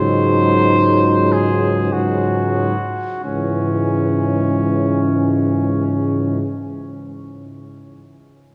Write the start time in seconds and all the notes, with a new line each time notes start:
Already playing: C#2 G#2 F#3 D#4 C5
1.32 G#4
1.92 G#2 F#3 D#4 F#4
3.24 C#2 G#2 E3 C#4